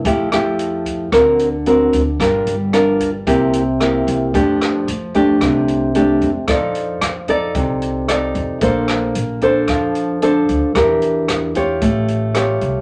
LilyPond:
<<
  \new Staff \with { instrumentName = "Nylon-string guitar" } { \time 4/4 \key f \major \tempo 4 = 112 << { <a e' g'>8 <a e' g'>4. <c' fis' bes'>8 r8 <c' fis' bes'>8 r8 | <d' f' bes'>8 r8 <d' f' bes'>8 r8 <bes e' g'>8 r8 <bes e' g'>4 | <a d' g'>4 r8 <a d' g'>4. <a d' g'>8 r8 | <ees' a' d''>4 r8 <ees' a' d''>4. <ees' a' d''>4 |
<d' a' c''>4 r8 <d' a' c''>4. <d' a' c''>4 | <d' g' bes'>4. <f' g' des''>4. <eis' g' cis''>4 | } \\ { f2 d2 | g2 c2 | f2 c2 | f2 c2 |
bes2 f2 | e2 a2 | } >> }
  \new Staff \with { instrumentName = "Upright bass" } { \clef bass \time 4/4 \key f \major f,8 f,4. d,4. d,8 | g,,8 g,,4. c,4. c,8 | f,4 f,4 c,4. f,16 r16 | f,4 f,4 c,4. f,16 r16 |
bes,,4 bes,,4 f,4. d,16 r16 | e,4 e,4 a,,4. bis,,16 r16 | }
  \new DrumStaff \with { instrumentName = "Drums" } \drummode { \time 4/4 <hh bd>8 <hh ss>8 hh8 <hh bd>8 <hh bd ss>8 hh8 hh8 <hh bd>8 | <hh bd ss>8 hh8 <hh ss>8 <hh bd>8 <hh bd>8 hh8 <hh ss>8 <hh bd>8 | <hh bd>8 <hh ss>8 hh8 <hh bd>8 <hh bd ss>8 hh8 hh8 <hh bd>8 | <hh bd ss>8 hh8 <hh ss>8 <hh bd>8 <hh bd>8 hh8 <hh ss>8 <hh bd>8 |
<hh bd>8 <hh ss>8 hh8 <hh bd>8 <hh bd ss>8 hh8 hh8 <hh bd>8 | <hh bd ss>8 hh8 <hh ss>8 <hh bd>8 <hh bd>8 hh8 <hh ss>8 <hh bd>8 | }
>>